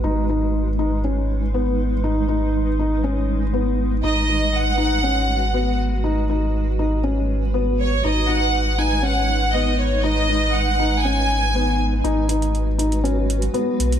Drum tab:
HH |----------------|----------------|----------------|----------------|

HH |----------------|----------------|x-xxx-xxx-xxx-xx|